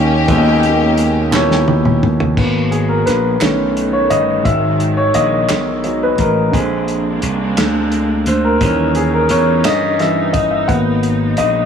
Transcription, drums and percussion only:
0, 0, Header, 1, 2, 480
1, 0, Start_track
1, 0, Tempo, 693642
1, 199, Time_signature, 6, 3, 24, 8
1, 8065, End_track
2, 0, Start_track
2, 0, Title_t, "Drums"
2, 196, Note_on_c, 9, 42, 73
2, 197, Note_on_c, 9, 36, 101
2, 265, Note_off_c, 9, 42, 0
2, 267, Note_off_c, 9, 36, 0
2, 436, Note_on_c, 9, 42, 47
2, 506, Note_off_c, 9, 42, 0
2, 675, Note_on_c, 9, 42, 60
2, 744, Note_off_c, 9, 42, 0
2, 919, Note_on_c, 9, 39, 88
2, 925, Note_on_c, 9, 38, 58
2, 989, Note_off_c, 9, 39, 0
2, 994, Note_off_c, 9, 38, 0
2, 1046, Note_on_c, 9, 38, 57
2, 1115, Note_off_c, 9, 38, 0
2, 1161, Note_on_c, 9, 48, 67
2, 1230, Note_off_c, 9, 48, 0
2, 1283, Note_on_c, 9, 47, 65
2, 1352, Note_off_c, 9, 47, 0
2, 1405, Note_on_c, 9, 45, 93
2, 1474, Note_off_c, 9, 45, 0
2, 1524, Note_on_c, 9, 43, 88
2, 1594, Note_off_c, 9, 43, 0
2, 1642, Note_on_c, 9, 36, 96
2, 1644, Note_on_c, 9, 49, 81
2, 1711, Note_off_c, 9, 36, 0
2, 1713, Note_off_c, 9, 49, 0
2, 1883, Note_on_c, 9, 42, 42
2, 1952, Note_off_c, 9, 42, 0
2, 2124, Note_on_c, 9, 42, 54
2, 2133, Note_on_c, 9, 38, 33
2, 2193, Note_off_c, 9, 42, 0
2, 2202, Note_off_c, 9, 38, 0
2, 2358, Note_on_c, 9, 39, 78
2, 2361, Note_on_c, 9, 42, 80
2, 2369, Note_on_c, 9, 38, 107
2, 2428, Note_off_c, 9, 39, 0
2, 2430, Note_off_c, 9, 42, 0
2, 2438, Note_off_c, 9, 38, 0
2, 2607, Note_on_c, 9, 42, 47
2, 2677, Note_off_c, 9, 42, 0
2, 2840, Note_on_c, 9, 42, 58
2, 2910, Note_off_c, 9, 42, 0
2, 3082, Note_on_c, 9, 36, 99
2, 3083, Note_on_c, 9, 42, 78
2, 3151, Note_off_c, 9, 36, 0
2, 3152, Note_off_c, 9, 42, 0
2, 3322, Note_on_c, 9, 42, 44
2, 3391, Note_off_c, 9, 42, 0
2, 3558, Note_on_c, 9, 42, 61
2, 3627, Note_off_c, 9, 42, 0
2, 3800, Note_on_c, 9, 39, 76
2, 3801, Note_on_c, 9, 42, 86
2, 3810, Note_on_c, 9, 38, 121
2, 3870, Note_off_c, 9, 39, 0
2, 3870, Note_off_c, 9, 42, 0
2, 3879, Note_off_c, 9, 38, 0
2, 4040, Note_on_c, 9, 42, 47
2, 4109, Note_off_c, 9, 42, 0
2, 4277, Note_on_c, 9, 42, 59
2, 4282, Note_on_c, 9, 36, 86
2, 4346, Note_off_c, 9, 42, 0
2, 4351, Note_off_c, 9, 36, 0
2, 4522, Note_on_c, 9, 36, 84
2, 4526, Note_on_c, 9, 42, 70
2, 4591, Note_off_c, 9, 36, 0
2, 4595, Note_off_c, 9, 42, 0
2, 4760, Note_on_c, 9, 42, 43
2, 4830, Note_off_c, 9, 42, 0
2, 4997, Note_on_c, 9, 42, 65
2, 5066, Note_off_c, 9, 42, 0
2, 5239, Note_on_c, 9, 42, 84
2, 5244, Note_on_c, 9, 39, 82
2, 5248, Note_on_c, 9, 38, 113
2, 5309, Note_off_c, 9, 42, 0
2, 5313, Note_off_c, 9, 39, 0
2, 5317, Note_off_c, 9, 38, 0
2, 5479, Note_on_c, 9, 42, 48
2, 5548, Note_off_c, 9, 42, 0
2, 5716, Note_on_c, 9, 42, 62
2, 5785, Note_off_c, 9, 42, 0
2, 5957, Note_on_c, 9, 42, 80
2, 5958, Note_on_c, 9, 36, 96
2, 6026, Note_off_c, 9, 42, 0
2, 6028, Note_off_c, 9, 36, 0
2, 6192, Note_on_c, 9, 42, 47
2, 6261, Note_off_c, 9, 42, 0
2, 6429, Note_on_c, 9, 42, 59
2, 6498, Note_off_c, 9, 42, 0
2, 6671, Note_on_c, 9, 42, 85
2, 6676, Note_on_c, 9, 39, 84
2, 6679, Note_on_c, 9, 38, 116
2, 6740, Note_off_c, 9, 42, 0
2, 6745, Note_off_c, 9, 39, 0
2, 6749, Note_off_c, 9, 38, 0
2, 6916, Note_on_c, 9, 42, 47
2, 6925, Note_on_c, 9, 38, 33
2, 6985, Note_off_c, 9, 42, 0
2, 6995, Note_off_c, 9, 38, 0
2, 7153, Note_on_c, 9, 42, 63
2, 7157, Note_on_c, 9, 36, 78
2, 7222, Note_off_c, 9, 42, 0
2, 7226, Note_off_c, 9, 36, 0
2, 7396, Note_on_c, 9, 36, 86
2, 7397, Note_on_c, 9, 42, 74
2, 7465, Note_off_c, 9, 36, 0
2, 7466, Note_off_c, 9, 42, 0
2, 7634, Note_on_c, 9, 42, 48
2, 7703, Note_off_c, 9, 42, 0
2, 7867, Note_on_c, 9, 42, 61
2, 7937, Note_off_c, 9, 42, 0
2, 8065, End_track
0, 0, End_of_file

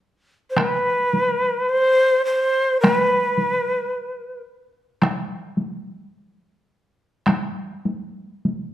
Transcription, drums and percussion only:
0, 0, Header, 1, 2, 480
1, 0, Start_track
1, 0, Tempo, 1138520
1, 236, Time_signature, 2, 2, 24, 8
1, 1192, Tempo, 1102941
1, 2632, Tempo, 1160542
1, 3709, End_track
2, 0, Start_track
2, 0, Title_t, "Taiko and cinematic ensemble drums"
2, 238, Note_on_c, 9, 37, 50
2, 238, Note_on_c, 9, 48, 47
2, 280, Note_off_c, 9, 37, 0
2, 280, Note_off_c, 9, 48, 0
2, 478, Note_on_c, 9, 48, 36
2, 520, Note_off_c, 9, 48, 0
2, 1196, Note_on_c, 9, 37, 49
2, 1196, Note_on_c, 9, 48, 50
2, 1240, Note_off_c, 9, 37, 0
2, 1240, Note_off_c, 9, 48, 0
2, 1434, Note_on_c, 9, 48, 36
2, 1477, Note_off_c, 9, 48, 0
2, 2146, Note_on_c, 9, 37, 45
2, 2146, Note_on_c, 9, 48, 47
2, 2189, Note_off_c, 9, 37, 0
2, 2189, Note_off_c, 9, 48, 0
2, 2386, Note_on_c, 9, 48, 37
2, 2429, Note_off_c, 9, 48, 0
2, 3099, Note_on_c, 9, 37, 47
2, 3099, Note_on_c, 9, 48, 47
2, 3140, Note_off_c, 9, 37, 0
2, 3140, Note_off_c, 9, 48, 0
2, 3342, Note_on_c, 9, 48, 40
2, 3384, Note_off_c, 9, 48, 0
2, 3589, Note_on_c, 9, 48, 39
2, 3631, Note_off_c, 9, 48, 0
2, 3709, End_track
0, 0, End_of_file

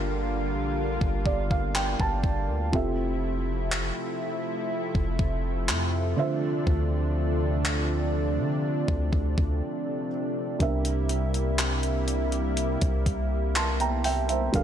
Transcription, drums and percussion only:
0, 0, Header, 1, 2, 480
1, 0, Start_track
1, 0, Tempo, 983607
1, 1334, Time_signature, 4, 2, 24, 8
1, 7141, End_track
2, 0, Start_track
2, 0, Title_t, "Drums"
2, 494, Note_on_c, 9, 36, 88
2, 543, Note_off_c, 9, 36, 0
2, 613, Note_on_c, 9, 36, 84
2, 662, Note_off_c, 9, 36, 0
2, 736, Note_on_c, 9, 36, 94
2, 784, Note_off_c, 9, 36, 0
2, 855, Note_on_c, 9, 39, 97
2, 904, Note_off_c, 9, 39, 0
2, 974, Note_on_c, 9, 36, 80
2, 1023, Note_off_c, 9, 36, 0
2, 1091, Note_on_c, 9, 36, 98
2, 1140, Note_off_c, 9, 36, 0
2, 1334, Note_on_c, 9, 36, 114
2, 1383, Note_off_c, 9, 36, 0
2, 1815, Note_on_c, 9, 39, 104
2, 1864, Note_off_c, 9, 39, 0
2, 2415, Note_on_c, 9, 36, 85
2, 2464, Note_off_c, 9, 36, 0
2, 2534, Note_on_c, 9, 36, 88
2, 2582, Note_off_c, 9, 36, 0
2, 2775, Note_on_c, 9, 39, 102
2, 2824, Note_off_c, 9, 39, 0
2, 3254, Note_on_c, 9, 36, 104
2, 3303, Note_off_c, 9, 36, 0
2, 3734, Note_on_c, 9, 39, 113
2, 3783, Note_off_c, 9, 39, 0
2, 4335, Note_on_c, 9, 36, 88
2, 4384, Note_off_c, 9, 36, 0
2, 4454, Note_on_c, 9, 36, 84
2, 4502, Note_off_c, 9, 36, 0
2, 4576, Note_on_c, 9, 36, 96
2, 4625, Note_off_c, 9, 36, 0
2, 5174, Note_on_c, 9, 36, 112
2, 5174, Note_on_c, 9, 42, 60
2, 5223, Note_off_c, 9, 36, 0
2, 5223, Note_off_c, 9, 42, 0
2, 5294, Note_on_c, 9, 42, 62
2, 5343, Note_off_c, 9, 42, 0
2, 5414, Note_on_c, 9, 42, 70
2, 5463, Note_off_c, 9, 42, 0
2, 5535, Note_on_c, 9, 42, 44
2, 5584, Note_off_c, 9, 42, 0
2, 5654, Note_on_c, 9, 42, 70
2, 5655, Note_on_c, 9, 39, 108
2, 5703, Note_off_c, 9, 42, 0
2, 5704, Note_off_c, 9, 39, 0
2, 5774, Note_on_c, 9, 42, 50
2, 5823, Note_off_c, 9, 42, 0
2, 5894, Note_on_c, 9, 42, 67
2, 5943, Note_off_c, 9, 42, 0
2, 6013, Note_on_c, 9, 42, 49
2, 6062, Note_off_c, 9, 42, 0
2, 6134, Note_on_c, 9, 42, 68
2, 6183, Note_off_c, 9, 42, 0
2, 6254, Note_on_c, 9, 42, 52
2, 6256, Note_on_c, 9, 36, 89
2, 6302, Note_off_c, 9, 42, 0
2, 6305, Note_off_c, 9, 36, 0
2, 6374, Note_on_c, 9, 36, 88
2, 6375, Note_on_c, 9, 42, 59
2, 6423, Note_off_c, 9, 36, 0
2, 6424, Note_off_c, 9, 42, 0
2, 6615, Note_on_c, 9, 42, 68
2, 6616, Note_on_c, 9, 39, 103
2, 6664, Note_off_c, 9, 39, 0
2, 6664, Note_off_c, 9, 42, 0
2, 6735, Note_on_c, 9, 42, 49
2, 6784, Note_off_c, 9, 42, 0
2, 6853, Note_on_c, 9, 46, 80
2, 6902, Note_off_c, 9, 46, 0
2, 6974, Note_on_c, 9, 42, 62
2, 7023, Note_off_c, 9, 42, 0
2, 7094, Note_on_c, 9, 36, 108
2, 7094, Note_on_c, 9, 42, 60
2, 7141, Note_off_c, 9, 36, 0
2, 7141, Note_off_c, 9, 42, 0
2, 7141, End_track
0, 0, End_of_file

